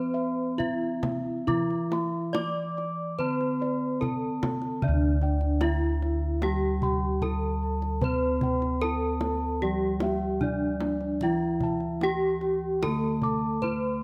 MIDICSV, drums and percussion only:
0, 0, Header, 1, 2, 480
1, 0, Start_track
1, 0, Tempo, 886263
1, 797, Time_signature, 4, 2, 24, 8
1, 1267, Tempo, 837989
1, 2227, Tempo, 801068
1, 8230, End_track
2, 0, Start_track
2, 0, Title_t, "Kendang"
2, 324, Note_on_c, 9, 64, 54
2, 379, Note_off_c, 9, 64, 0
2, 557, Note_on_c, 9, 62, 25
2, 557, Note_on_c, 9, 63, 62
2, 557, Note_on_c, 9, 64, 65
2, 611, Note_off_c, 9, 62, 0
2, 611, Note_off_c, 9, 63, 0
2, 611, Note_off_c, 9, 64, 0
2, 802, Note_on_c, 9, 64, 72
2, 856, Note_off_c, 9, 64, 0
2, 922, Note_on_c, 9, 62, 19
2, 976, Note_off_c, 9, 62, 0
2, 1038, Note_on_c, 9, 63, 55
2, 1092, Note_off_c, 9, 63, 0
2, 1271, Note_on_c, 9, 62, 20
2, 1271, Note_on_c, 9, 63, 61
2, 1328, Note_off_c, 9, 62, 0
2, 1328, Note_off_c, 9, 63, 0
2, 1520, Note_on_c, 9, 62, 21
2, 1577, Note_off_c, 9, 62, 0
2, 1762, Note_on_c, 9, 62, 19
2, 1819, Note_off_c, 9, 62, 0
2, 1878, Note_on_c, 9, 62, 20
2, 1935, Note_off_c, 9, 62, 0
2, 2001, Note_on_c, 9, 62, 21
2, 2058, Note_off_c, 9, 62, 0
2, 2231, Note_on_c, 9, 62, 23
2, 2231, Note_on_c, 9, 64, 59
2, 2291, Note_off_c, 9, 62, 0
2, 2291, Note_off_c, 9, 64, 0
2, 2474, Note_on_c, 9, 62, 24
2, 2474, Note_on_c, 9, 63, 65
2, 2474, Note_on_c, 9, 64, 60
2, 2534, Note_off_c, 9, 62, 0
2, 2534, Note_off_c, 9, 63, 0
2, 2534, Note_off_c, 9, 64, 0
2, 2587, Note_on_c, 9, 62, 23
2, 2647, Note_off_c, 9, 62, 0
2, 2711, Note_on_c, 9, 64, 73
2, 2771, Note_off_c, 9, 64, 0
2, 2946, Note_on_c, 9, 62, 25
2, 3006, Note_off_c, 9, 62, 0
2, 3062, Note_on_c, 9, 62, 25
2, 3122, Note_off_c, 9, 62, 0
2, 3181, Note_on_c, 9, 63, 61
2, 3241, Note_off_c, 9, 63, 0
2, 3431, Note_on_c, 9, 62, 22
2, 3491, Note_off_c, 9, 62, 0
2, 3667, Note_on_c, 9, 63, 56
2, 3727, Note_off_c, 9, 63, 0
2, 3907, Note_on_c, 9, 62, 18
2, 3907, Note_on_c, 9, 64, 62
2, 3967, Note_off_c, 9, 62, 0
2, 3967, Note_off_c, 9, 64, 0
2, 4146, Note_on_c, 9, 64, 64
2, 4206, Note_off_c, 9, 64, 0
2, 4507, Note_on_c, 9, 62, 23
2, 4567, Note_off_c, 9, 62, 0
2, 4624, Note_on_c, 9, 64, 79
2, 4683, Note_off_c, 9, 64, 0
2, 4862, Note_on_c, 9, 62, 25
2, 4862, Note_on_c, 9, 64, 73
2, 4922, Note_off_c, 9, 62, 0
2, 4922, Note_off_c, 9, 64, 0
2, 4986, Note_on_c, 9, 62, 26
2, 5046, Note_off_c, 9, 62, 0
2, 5337, Note_on_c, 9, 62, 20
2, 5337, Note_on_c, 9, 63, 48
2, 5397, Note_off_c, 9, 62, 0
2, 5397, Note_off_c, 9, 63, 0
2, 5815, Note_on_c, 9, 62, 20
2, 5815, Note_on_c, 9, 63, 55
2, 5875, Note_off_c, 9, 62, 0
2, 5875, Note_off_c, 9, 63, 0
2, 6057, Note_on_c, 9, 64, 59
2, 6117, Note_off_c, 9, 64, 0
2, 6295, Note_on_c, 9, 63, 55
2, 6355, Note_off_c, 9, 63, 0
2, 6416, Note_on_c, 9, 62, 20
2, 6476, Note_off_c, 9, 62, 0
2, 6537, Note_on_c, 9, 64, 64
2, 6597, Note_off_c, 9, 64, 0
2, 6775, Note_on_c, 9, 62, 23
2, 6775, Note_on_c, 9, 64, 68
2, 6835, Note_off_c, 9, 62, 0
2, 6835, Note_off_c, 9, 64, 0
2, 6894, Note_on_c, 9, 62, 20
2, 6954, Note_off_c, 9, 62, 0
2, 7019, Note_on_c, 9, 63, 47
2, 7079, Note_off_c, 9, 63, 0
2, 7258, Note_on_c, 9, 62, 20
2, 7318, Note_off_c, 9, 62, 0
2, 7506, Note_on_c, 9, 63, 62
2, 7566, Note_off_c, 9, 63, 0
2, 7740, Note_on_c, 9, 62, 21
2, 7740, Note_on_c, 9, 64, 52
2, 7800, Note_off_c, 9, 62, 0
2, 7800, Note_off_c, 9, 64, 0
2, 7986, Note_on_c, 9, 64, 49
2, 8046, Note_off_c, 9, 64, 0
2, 8230, End_track
0, 0, End_of_file